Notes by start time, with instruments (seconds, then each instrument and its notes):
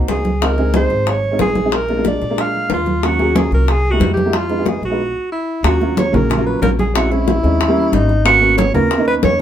Already playing: upright piano A#3 C4 D#4 F#4
0.08 upright bass C#2, alto saxophone G#4, high bongo, low bongo, high conga
0.25 high bongo, high conga
0.41 upright piano G#3 C4 D#4 F4, alto saxophone A#4, high bongo, high conga
0.58 upright piano G#3 C4 D#4 G#4, high bongo, high conga
0.74 upright piano G#3 C4 D#4 G#4, alto saxophone C5, high bongo, high conga
0.90 upright bass G#1, high bongo, high conga
1.07 alto saxophone C#5, high bongo, high conga
1.24 high conga
1.31 upright piano G#3 C4 D#4 F4
1.39 upright bass A#1, alto saxophone G#4, high bongo, low bongo, high conga
1.55 high bongo, high conga
1.64 upright piano G#3 C4 D#4 G#4
1.72 alto saxophone A#4, high bongo, high conga
1.88 upright piano G#3 A#3 D4 F4, high bongo, high conga
1.97 upright piano G#3 A#3 D4 F4
2.05 alto saxophone D5, high bongo, high conga
2.22 upright bass A#2, high bongo, high conga
2.30 upright piano G#3 A#3 D4 F4
2.38 alto saxophone F5, high bongo, high conga
2.55 high conga
2.69 upright bass D#2, high bongo, low bongo, high conga
2.74 alto saxophone F4
2.86 high bongo, high conga
3.03 upright piano F#3 A#3 C#4 F4, alto saxophone F#4, high bongo, high conga
3.19 upright piano F#3 A#3 C#4 G#4, high bongo, high conga
3.35 upright piano F#3 A#3 C#4 F4, alto saxophone G#4, high bongo, high conga
3.51 upright bass C2, alto saxophone A#4, high bongo, high conga
3.68 alto saxophone G#4, high bongo, high conga
3.85 high conga
3.91 upright piano G#3 A#3 E4 G4, alto saxophone F#4
4.00 upright bass F2, high bongo, low bongo, high conga
4.14 alto saxophone G4, high bongo, high conga
4.25 upright piano G#3 A#3 E4 F#4
4.33 alto saxophone F4, high bongo, high conga
4.49 upright piano G#3 B3 D#4 F4, high bongo, high conga
4.58 upright piano G#3 B3 D#4 G#4
4.66 alto saxophone G#4, high bongo, high conga
4.81 upright bass A#1, alto saxophone F#4, high bongo, high conga
4.90 upright piano G#3 B3 D#4 F4
5.32 alto saxophone E4
5.63 upright bass D#2, upright piano F#3 A#3 C#4 F4, alto saxophone F#4, high bongo, high conga
5.80 upright piano F#3 A#3 C#4 F4, high bongo, high conga
5.97 alto saxophone C#5, high bongo, high conga
6.12 upright bass A#1, upright piano F#3 A#3 C#4 G#4, alto saxophone A#4, high bongo, high conga, low conga
6.30 high bongo, high conga, low conga
6.37 upright piano F#3 A#3 C#4 F4
6.46 alto saxophone B4, high conga
6.62 upright bass A#1, alto saxophone A#4, high bongo, low bongo, high conga
6.79 alto saxophone G#4, high bongo, high conga
6.94 upright piano G#3 C4 C#4 E4, alto saxophone F#4, high bongo, high conga
7.11 upright piano G#3 C4 C#4 E4, alto saxophone E4, high bongo, high conga
7.28 high bongo, high conga
7.43 upright bass D#2, upright piano G#3 C4 C#4 D#4, high bongo, high conga
7.61 high bongo, high conga
7.68 upright piano G3 A#3 C#4 E4
7.77 high conga
7.92 upright bass G#1, alto saxophone D#4, high bongo, low bongo, high conga
8.09 high bongo
8.24 upright piano A#3 B3 C#4 F#4, alto saxophone F#4, high bongo, high conga
8.41 upright piano A#3 B3 C#4 F#4, high bongo, high conga
8.57 alto saxophone C#5, high bongo, high conga
8.74 upright bass D#2, upright piano A#3 B3 C#4 F4, alto saxophone A#4, high bongo, high conga, low conga
8.91 high bongo, high conga
8.98 upright piano A#3 B3 C#4 D#4
9.07 alto saxophone B4, high conga
9.23 upright bass F2, alto saxophone C#5, high bongo, low bongo, high conga